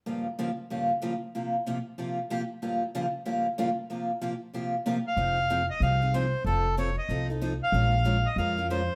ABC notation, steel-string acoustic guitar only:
X:1
M:4/4
L:1/8
Q:"Swing" 1/4=188
K:Fm
V:1 name="Steel-string acoustic guitar"
[G,,D,F,B,FG] z [G,,D,F,B,FG] z [G,,D,F,B,FG] z [G,,D,F,B,FG] z | [C,F,B,FG] z [C,F,B,FG] z [C,F,B,FG] z [C,F,B,FG] z | [G,,D,F,B,FG] z [G,,D,F,B,FG] z [G,,D,F,B,FG] z [G,,D,F,B,FG] z | [C,F,B,FG] z [C,F,B,FG] z [C,F,B,FG] z [C,F,B,FG] z |
[F,CEA] z [F,CEA] z [F,CEA] [CEA] [F,CEA] z | [F,CE=A] z [F,CEA] z [F,CEA] [CEA] [F,CEA] z | [F,A,DFB] z [F,A,DFB] z [F,A,DFB] [DFB] [F,A,DFB] z |]